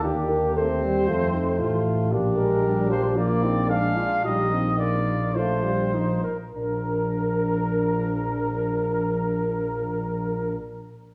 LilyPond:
<<
  \new Staff \with { instrumentName = "Trumpet" } { \time 4/4 \key bes \major \tempo 4 = 106 g'4 c''2~ c''8 r8 | r8 bes'4 c''8 d''4 f''4 | ees''4 d''4 c''4. bes'8 | bes'1~ |
bes'1 | }
  \new Staff \with { instrumentName = "French horn" } { \time 4/4 \key bes \major ees'8 bes'8 a'8 g'8 f'8 ees'8 f'4 | g'2 f'8 ees'8 d'8 f'8 | g'8 ees'4. f'8 r8 ees'8 r8 | d'1~ |
d'1 | }
  \new Staff \with { instrumentName = "Trumpet" } { \time 4/4 \key bes \major d'4 c'4 c'4 f'4 | d'4 d'4 bes8 c'8 d'4 | ees'8 r8 f'4 f'4 ees'8 r8 | bes'1~ |
bes'1 | }
  \new Staff \with { instrumentName = "Trombone" } { \clef bass \time 4/4 \key bes \major bes4 a8 g8 a8 a4. | bes8 aes8 g8 f8 bes4 aes4 | g8 c'8 bes8 r8 a8 g8 f8 r8 | f1~ |
f1 | }
  \new Staff \with { instrumentName = "Bass trombone" } { \clef bass \time 4/4 \key bes \major ees,2 f,4 a,,4 | bes,,1 | bes,,2.~ bes,,8 r8 | bes,,1~ |
bes,,1 | }
>>